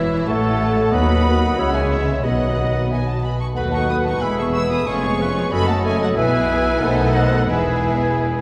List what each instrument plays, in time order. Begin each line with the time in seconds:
Already playing: double bass section E1, cello section E2, viola section E3, bassoon E3, french horn section E3, clarinet E4, violin section E4 E5, flute C#5, oboe E5
0.27 double bass section A1, cello section A2, french horn section A3, viola section A3, bassoon A3, violin section A4 A5, clarinet A4, oboe C#5, flute F#5
0.92 cello section D#2, double bass section D#2, bassoon F#3, french horn section F#3 F#4, viola section B3 F#4, violin section F#4 B4 B5, clarinet B4, oboe D#5, flute F#5
1.27 bassoon D#3
1.57 double bass section C#2, cello section C#3, french horn section E3 G#4, viola section G#3 C#4, bassoon G#3, violin section E4 C#5, clarinet C#5, oboe E5
1.74 flute E5, violin section G#5
1.92 flute C#5, violin section E5
2.23 double bass section B1, cello section B2, french horn section D#3 F#4, bassoon F#3, viola section B3 F#4, violin section B4 D#5 F#5, flute D#5, oboe D#5, clarinet D#5
2.90 flute E5, violin section G#5
3.07 flute F#5, violin section A5
3.22 flute G#5, violin section B5
3.39 flute A5, violin section C#6
3.54 cello section D#2, double bass section D#2, french horn section F#3 A4, viola section A3 F#4, bassoon B3, violin section B4 B5, clarinet B4, flute F#5, oboe F#5
3.72 viola section B3 D#4, violin section A4 D#5 C#6, flute A5
3.87 viola section A3 F#4, violin section B4 D#6, flute B5
4.04 viola section B3 D#4, violin section A4 D#5 C#6, flute A5
4.20 double bass section E1, cello section E2, viola section G#3 E4, french horn section B3, clarinet G#4, violin section B4 B5, oboe E5, flute G#5
4.36 viola section B3 G#4, violin section G#4 E5 C#6, flute A5
4.52 viola section G#3 E4, violin section B4 E6, flute C#6
4.69 viola section B3 G#4, violin section G#4 E5 D#6, flute B5
4.85 double bass section F1, cello section F2, viola section F3 C#4, bassoon G#3, violin section F4 B4 C#6, french horn section G#4, clarinet G#4, oboe C#5, flute G#5
5.03 viola section G#3 B3, violin section G#4 C#5
5.19 viola section F3 C#4, violin section F4 B4, clarinet B4
5.36 viola section G#3 B3, violin section G#4 C#5
5.50 double bass section F#1, cello section F#2, viola section F#3 C#4, bassoon F#3, french horn section A3 F#4, clarinet A4, violin section A4 C#5 B5, oboe D#5, flute G#5
5.67 viola section A3, violin section F#4 A4 A5, flute F#5
5.83 viola section F#3 C#4, violin section A4 C#5 G#5, flute E5
6.00 viola section A3, violin section F#4 A4 F#5, flute D#5
6.15 double bass section B1, cello section B2, bassoon E3, french horn section B3 E4, viola section B3 E4, violin section G#4 B4 G#5, clarinet B4, flute E5, oboe E5
6.80 double bass section B1, cello section B2, bassoon D#3, french horn section A3 D#4, viola section B3 D#4, violin section A4 C5, clarinet A4, oboe F#5
7.14 flute D#5, violin section F#5
7.47 double bass section E1, cello section E2, bassoon E3, french horn section G#3 E4, viola section B3 E4, violin section G#4 B4 E5, clarinet G#4, flute B4, oboe G#5